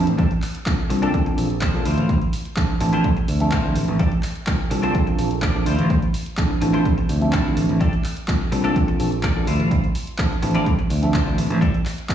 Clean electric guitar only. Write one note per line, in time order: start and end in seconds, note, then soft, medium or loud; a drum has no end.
0.18 0.31 D4 loud
0.18 0.31 G4 medium
0.18 0.31 A4 loud
0.42 muted clean electric guitar stroke soft
0.78 muted clean electric guitar stroke soft
0.90 muted clean electric guitar stroke medium
1.02 1.14 D4 medium
1.02 1.14 G4 medium
1.02 1.14 A4 loud
1.26 muted clean electric guitar stroke loud
1.38 muted clean electric guitar stroke soft
1.61 1.85 D4 medium
1.61 1.85 A4 medium
1.61 1.85 C5 medium
1.85 2.24 E4 medium
1.85 2.24 F4 medium
1.85 2.24 C5 medium
2.33 muted clean electric guitar stroke soft
2.69 muted clean electric guitar stroke soft
2.81 muted clean electric guitar stroke medium
2.93 3.04 E4 medium
2.93 3.05 F4 medium
2.93 3.05 C5 loud
3.16 muted clean electric guitar stroke loud
3.28 muted clean electric guitar stroke soft
3.52 3.76 E4 medium
3.52 3.76 F4 medium
3.52 3.76 C5 medium
3.99 4.12 D4 loud
3.99 4.12 G4 medium
3.99 4.12 A4 loud
4.23 muted clean electric guitar stroke soft
4.59 muted clean electric guitar stroke soft
4.70 muted clean electric guitar stroke medium
4.83 4.95 D4 medium
4.83 4.95 G4 medium
4.83 4.95 C5 loud
5.07 muted clean electric guitar stroke loud
5.18 muted clean electric guitar stroke soft
5.42 5.65 D4 medium
5.42 5.66 A4 medium
5.42 5.66 D5 loud
5.66 6.04 E4 medium
5.66 6.05 F4 medium
5.66 6.05 C5 medium
6.14 muted clean electric guitar stroke soft
6.50 muted clean electric guitar stroke soft
6.61 muted clean electric guitar stroke medium
6.73 6.85 E4 medium
6.73 6.85 F4 medium
6.73 6.86 C5 medium
6.97 muted clean electric guitar stroke loud
7.09 muted clean electric guitar stroke soft
7.33 7.57 E4 medium
7.33 7.57 F4 medium
7.33 7.57 A4 medium
7.80 7.93 D4 loud
7.80 7.93 G4 loud
7.80 7.93 A4 loud
8.04 muted clean electric guitar stroke soft
8.40 muted clean electric guitar stroke soft
8.52 muted clean electric guitar stroke medium
8.64 8.76 D4 medium
8.64 8.76 G4 medium
8.64 8.76 A4 medium
8.88 muted clean electric guitar stroke loud
8.99 muted clean electric guitar stroke soft
9.23 9.47 D4 medium
9.23 9.47 A4 medium
9.23 9.47 D5 medium
9.47 9.86 E4 medium
9.47 9.86 F4 medium
9.47 9.86 C5 loud
9.95 muted clean electric guitar stroke soft
10.31 muted clean electric guitar stroke soft
10.42 muted clean electric guitar stroke medium
10.54 10.66 E4 medium
10.54 10.66 F4 medium
10.54 10.67 D5 loud
10.78 muted clean electric guitar stroke loud
10.90 muted clean electric guitar stroke soft
11.14 11.38 E4 medium
11.14 11.38 F4 medium
11.14 11.38 C5 medium
11.61 11.74 D4 loud
11.61 11.74 G4 medium
11.61 11.74 A4 loud
11.85 muted clean electric guitar stroke soft